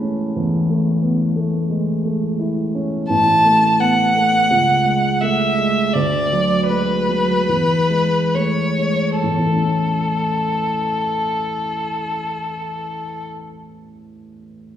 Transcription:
Already playing: A1 G#3 A3 B3 E4 A4 E5 A5
0.01 C#4
0.36 E2
0.70 A3
1.03 B3
1.36 A3
1.70 G#3
2.05 A3
2.39 E4
2.75 C#4
3.10 A1 A5
3.45 A3
3.80 B3 F#5
4.15 A3
4.50 C#2
4.85 G#3
5.21 A3 E5
5.58 G#3
5.94 D2 D5
6.32 F#3
6.68 G#3 B4
7.09 F#3
7.49 E2
7.90 G#3
8.35 A3 C#5
8.79 G#3
9.20 A1 A4
9.31 E2
9.39 E3
9.47 A3
9.55 C#4
9.63 E4

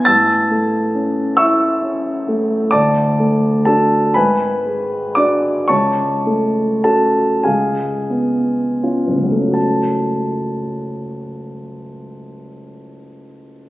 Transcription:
0.05 A1 A5 E6 A6
0.51 A3
0.95 C#4
1.37 E4 E5 C#6 E6
1.82 C#4
2.28 A3
2.71 D2 D5 A5 D6
3.20 A3
3.65 D4 F#4 A4 A5
4.14 G#1 B4 G#5 B5
4.65 G#3
5.15 D4 F#4 D5 D6
5.68 C#2 C#5 A5 C#6
6.26 A3
6.84 C#4 F#4 A4 A5
7.44 C#2 G#4 F5 G#5
8.10 B3
8.83 C#4 F4
9.07 F#1
9.16 C#2
9.23 F#3
9.32 A3
9.39 C#4
9.48 F#4
9.54 A5

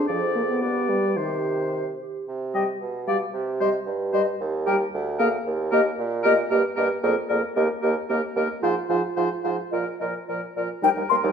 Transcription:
0.08 F2 F3 G#4 C5 D5
0.36 A#3
0.49 B3
0.62 G2 G4 B4 D5
0.89 G3
1.16 C3 D#3 G4 C5
1.73 C5
2.00 G4
2.28 C3
2.54 G3 G4 D#5 G5
2.81 B2
3.07 G3 G4 D5 F5
3.33 C3
3.60 G3 G4 C5 D#5
3.86 G2
4.13 G3 G4 C5 D#5
4.40 D#2
4.67 G3 G4 A#4 G5
4.94 D2
5.19 A#3 G#4 A#4 F5
5.47 D#2
5.71 A#3 G4 A#4 D#5
5.99 A#2
6.23 A#3 G4 A#4 D#5
6.50 G2 A#3 G4 A#4 D#5
6.76 G2 A#3 G4 A#4 D#5
7.03 F2 A#3 G#4 A#4 D5
7.29 F2 A#3 G#4 A#4 D5
7.56 D#2 A#3 G4 A#4 D#5
7.81 D#2 A#3 G4 A#4 D#5
8.09 D#2 A#3 G4 A#4 D#5
8.36 D#2 A#3 G4 A#4 D#5
8.62 G#2 F3 F4 C5 F5
8.89 G#2 F3 F4 C5 F5
9.16 G#2 F3 F4 C5 F5
9.43 G#2 F3 F4 C5 F5
9.71 A#2 F3 F4 A#4 D#5
9.99 A#2 F3 F4 A#4 D#5
10.28 A#2 F3 F4 A#4 D5
10.56 A#2 F3 F4 A#4 D5
10.82 D#2 G3 D#4 A#4 G5
10.97 D#2 G3 D#4
11.09 D#2 G3 A#3 C6
11.23 D#2 G3 D#4

